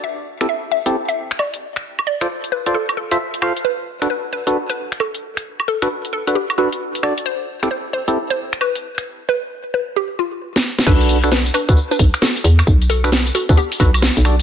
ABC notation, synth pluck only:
X:1
M:4/4
L:1/16
Q:"Swing 16ths" 1/4=133
K:Bphr
V:1 name="Synth pluck"
e2 z2 e z e z2 e z2 d z3 | z2 d2 z2 B z A z A4- A z | B2 z2 B z B z2 B z2 A z3 | z2 A2 z2 A z G z F4- F z |
c2 z2 c z c z2 c z2 B z3 | z2 B2 z2 B z G z ^E4- E z | [DB]2 z2 [DB] z [DB] z2 [DB] z2 [FA] z3 | z2 [FA]2 z2 [FA] z [B,G] z [DF]4- [DF] z |]